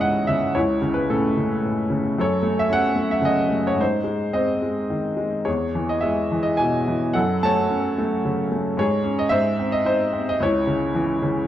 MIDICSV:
0, 0, Header, 1, 2, 480
1, 0, Start_track
1, 0, Tempo, 543478
1, 494, Time_signature, 3, 2, 24, 8
1, 3364, Tempo, 556070
1, 6724, Tempo, 543478
1, 10054, End_track
2, 0, Start_track
2, 0, Title_t, "Grand piano"
2, 0, Program_c, 0, 0
2, 0, Control_c, 0, 64, 127
2, 0, Note_on_c, 0, 37, 45
2, 0, Note_on_c, 0, 44, 42
2, 0, Note_on_c, 0, 49, 43
2, 0, Note_on_c, 0, 52, 45
2, 0, Note_on_c, 0, 64, 39
2, 0, Note_on_c, 0, 73, 61
2, 0, Note_on_c, 0, 75, 62
2, 0, Note_on_c, 0, 76, 61
2, 7, Note_on_c, 0, 78, 75
2, 234, Note_off_c, 0, 49, 0
2, 240, Note_off_c, 0, 76, 0
2, 240, Note_on_c, 0, 76, 75
2, 247, Note_on_c, 0, 49, 41
2, 259, Note_off_c, 0, 78, 0
2, 459, Note_off_c, 0, 37, 0
2, 461, Note_off_c, 0, 52, 0
2, 471, Note_off_c, 0, 76, 0
2, 474, Note_off_c, 0, 44, 0
2, 484, Note_off_c, 0, 73, 0
2, 484, Note_on_c, 0, 73, 69
2, 485, Note_off_c, 0, 49, 0
2, 493, Note_off_c, 0, 64, 0
2, 493, Note_on_c, 0, 64, 50
2, 498, Note_on_c, 0, 37, 47
2, 505, Control_c, 0, 64, 0
2, 513, Note_off_c, 0, 75, 0
2, 678, Control_c, 0, 64, 127
2, 720, Note_on_c, 0, 49, 46
2, 829, Note_on_c, 0, 71, 66
2, 863, Note_off_c, 0, 73, 0
2, 967, Note_off_c, 0, 71, 0
2, 971, Note_on_c, 0, 45, 50
2, 972, Note_on_c, 0, 69, 57
2, 990, Note_on_c, 0, 61, 42
2, 1182, Note_off_c, 0, 64, 0
2, 1196, Note_off_c, 0, 49, 0
2, 1210, Note_on_c, 0, 49, 43
2, 1428, Note_off_c, 0, 45, 0
2, 1441, Note_on_c, 0, 45, 43
2, 1656, Note_off_c, 0, 69, 0
2, 1664, Note_off_c, 0, 49, 0
2, 1665, Note_off_c, 0, 61, 0
2, 1677, Note_on_c, 0, 49, 46
2, 1898, Note_off_c, 0, 37, 0
2, 1909, Note_off_c, 0, 45, 0
2, 1916, Note_off_c, 0, 49, 0
2, 1929, Note_on_c, 0, 42, 52
2, 1938, Note_on_c, 0, 69, 53
2, 1942, Control_c, 0, 64, 0
2, 1951, Note_on_c, 0, 73, 70
2, 2092, Control_c, 0, 64, 127
2, 2143, Note_on_c, 0, 57, 46
2, 2290, Note_on_c, 0, 76, 77
2, 2307, Note_off_c, 0, 73, 0
2, 2382, Note_on_c, 0, 61, 55
2, 2408, Note_on_c, 0, 78, 90
2, 2411, Note_off_c, 0, 76, 0
2, 2597, Note_off_c, 0, 57, 0
2, 2610, Note_on_c, 0, 57, 46
2, 2611, Note_off_c, 0, 69, 0
2, 2747, Note_on_c, 0, 76, 69
2, 2775, Note_off_c, 0, 78, 0
2, 2840, Note_on_c, 0, 49, 46
2, 2866, Note_off_c, 0, 76, 0
2, 2871, Note_on_c, 0, 75, 74
2, 3067, Note_off_c, 0, 57, 0
2, 3080, Note_on_c, 0, 57, 43
2, 3212, Note_off_c, 0, 75, 0
2, 3242, Note_on_c, 0, 73, 69
2, 3313, Note_on_c, 0, 44, 50
2, 3324, Note_off_c, 0, 61, 0
2, 3328, Note_off_c, 0, 42, 0
2, 3328, Note_off_c, 0, 49, 0
2, 3335, Note_off_c, 0, 57, 0
2, 3363, Note_on_c, 0, 72, 67
2, 3367, Note_off_c, 0, 73, 0
2, 3374, Note_on_c, 0, 63, 46
2, 3375, Control_c, 0, 64, 0
2, 3507, Control_c, 0, 64, 127
2, 3563, Note_on_c, 0, 56, 45
2, 3815, Note_on_c, 0, 60, 50
2, 3817, Note_on_c, 0, 75, 66
2, 3821, Note_off_c, 0, 72, 0
2, 3834, Note_on_c, 0, 72, 46
2, 4045, Note_off_c, 0, 63, 0
2, 4052, Note_off_c, 0, 56, 0
2, 4065, Note_on_c, 0, 56, 42
2, 4306, Note_on_c, 0, 51, 43
2, 4514, Note_off_c, 0, 75, 0
2, 4522, Note_off_c, 0, 72, 0
2, 4524, Note_off_c, 0, 56, 0
2, 4537, Note_on_c, 0, 56, 42
2, 4742, Note_off_c, 0, 44, 0
2, 4762, Note_off_c, 0, 60, 0
2, 4780, Note_on_c, 0, 73, 62
2, 4782, Note_off_c, 0, 51, 0
2, 4784, Note_off_c, 0, 56, 0
2, 4784, Note_on_c, 0, 68, 41
2, 4798, Note_on_c, 0, 40, 48
2, 4813, Control_c, 0, 64, 0
2, 4953, Control_c, 0, 64, 127
2, 5039, Note_on_c, 0, 52, 46
2, 5162, Note_on_c, 0, 75, 65
2, 5168, Note_off_c, 0, 73, 0
2, 5261, Note_on_c, 0, 76, 64
2, 5279, Note_on_c, 0, 56, 47
2, 5290, Note_off_c, 0, 75, 0
2, 5488, Note_off_c, 0, 68, 0
2, 5516, Note_off_c, 0, 52, 0
2, 5529, Note_on_c, 0, 52, 49
2, 5611, Note_off_c, 0, 76, 0
2, 5624, Note_on_c, 0, 75, 67
2, 5749, Note_off_c, 0, 75, 0
2, 5749, Note_on_c, 0, 80, 75
2, 5772, Note_on_c, 0, 47, 48
2, 5999, Note_off_c, 0, 52, 0
2, 6012, Note_on_c, 0, 52, 46
2, 6213, Note_off_c, 0, 40, 0
2, 6216, Note_off_c, 0, 56, 0
2, 6235, Note_on_c, 0, 78, 73
2, 6236, Note_off_c, 0, 47, 0
2, 6243, Note_off_c, 0, 52, 0
2, 6247, Note_on_c, 0, 69, 55
2, 6248, Note_on_c, 0, 42, 53
2, 6253, Note_off_c, 0, 80, 0
2, 6262, Control_c, 0, 64, 0
2, 6430, Control_c, 0, 64, 127
2, 6488, Note_off_c, 0, 78, 0
2, 6490, Note_on_c, 0, 81, 80
2, 6491, Note_on_c, 0, 57, 45
2, 6509, Note_on_c, 0, 73, 58
2, 6721, Note_on_c, 0, 61, 48
2, 6931, Note_off_c, 0, 69, 0
2, 6959, Note_off_c, 0, 57, 0
2, 6973, Note_on_c, 0, 57, 49
2, 7210, Note_on_c, 0, 49, 45
2, 7407, Note_off_c, 0, 81, 0
2, 7417, Note_off_c, 0, 73, 0
2, 7431, Note_off_c, 0, 57, 0
2, 7445, Note_on_c, 0, 57, 39
2, 7640, Note_off_c, 0, 42, 0
2, 7645, Note_off_c, 0, 61, 0
2, 7664, Note_off_c, 0, 49, 0
2, 7670, Note_off_c, 0, 57, 0
2, 7671, Note_on_c, 0, 44, 58
2, 7685, Note_on_c, 0, 73, 75
2, 7686, Control_c, 0, 64, 0
2, 7699, Note_on_c, 0, 68, 52
2, 7854, Control_c, 0, 64, 127
2, 7908, Note_on_c, 0, 61, 46
2, 8036, Note_on_c, 0, 75, 76
2, 8045, Note_off_c, 0, 73, 0
2, 8128, Note_off_c, 0, 68, 0
2, 8129, Note_on_c, 0, 76, 85
2, 8132, Note_off_c, 0, 44, 0
2, 8141, Note_off_c, 0, 61, 0
2, 8144, Note_off_c, 0, 75, 0
2, 8146, Note_on_c, 0, 44, 66
2, 8150, Note_on_c, 0, 72, 61
2, 8159, Control_c, 0, 64, 0
2, 8317, Control_c, 0, 64, 127
2, 8395, Note_on_c, 0, 60, 45
2, 8508, Note_on_c, 0, 75, 73
2, 8510, Note_off_c, 0, 76, 0
2, 8619, Note_off_c, 0, 72, 0
2, 8621, Note_on_c, 0, 63, 52
2, 8632, Note_off_c, 0, 75, 0
2, 8632, Note_on_c, 0, 72, 78
2, 8857, Note_off_c, 0, 60, 0
2, 8870, Note_on_c, 0, 60, 43
2, 9001, Note_off_c, 0, 72, 0
2, 9010, Note_on_c, 0, 75, 71
2, 9078, Note_off_c, 0, 44, 0
2, 9089, Note_off_c, 0, 63, 0
2, 9102, Note_off_c, 0, 60, 0
2, 9108, Note_on_c, 0, 37, 54
2, 9111, Note_off_c, 0, 75, 0
2, 9119, Control_c, 0, 64, 0
2, 9131, Note_on_c, 0, 73, 73
2, 9144, Note_on_c, 0, 64, 51
2, 9295, Control_c, 0, 64, 127
2, 9347, Note_on_c, 0, 49, 52
2, 9592, Note_on_c, 0, 52, 54
2, 9821, Note_off_c, 0, 49, 0
2, 9834, Note_on_c, 0, 49, 51
2, 10054, Note_off_c, 0, 37, 0
2, 10054, Note_off_c, 0, 49, 0
2, 10054, Note_off_c, 0, 52, 0
2, 10054, Note_off_c, 0, 64, 0
2, 10054, Note_off_c, 0, 73, 0
2, 10054, End_track
0, 0, End_of_file